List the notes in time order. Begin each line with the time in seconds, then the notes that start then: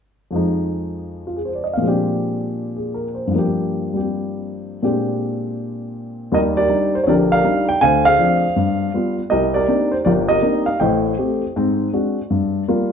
0.31 F2 F3 G#3
0.36 D#4
1.27 F4
1.36 G#4
1.45 C5
1.55 D5
1.64 D#5
1.74 A#2 F5
1.79 F3 G#3
1.84 C4 D4
1.88 G4
2.77 G#4
2.94 A#4
3.15 C5
3.27 G2 F3
3.35 A#3 G4
3.94 G3 C4 G4
4.83 A#2 G#3 C4 D4 G4
6.32 D#2 G3 G4 A#4 D#5
6.57 G4 A#4 D5
6.69 G3 D4 D#4
6.95 C5
7.04 A#1 D3 C#5
7.09 G4 A#4 D5
7.32 A#4 D5 F5
7.44 G3 D4 D#4
7.69 G5
7.81 D2 D3 C5 F5 G#5
8.05 G#4 C5 F5
8.18 F3 C4 D4
8.56 G2
8.94 G3 B3 F4
9.30 C2 G4 A#4 D#5
9.54 G4 A#4 D5
9.68 A#3 C4 D4 D#4
9.92 C5
10.05 G1 G4 A#4 D5
10.29 G4 A#4 D#5
10.42 A#3 C4 D4 D#4
10.66 F5
10.80 A1 A2 C5 D#5 G5
11.18 A3 C4 G4
11.56 G#2 C4
11.93 G#3 C4 D4 F#4
12.30 G2
12.68 G3 A#3 F4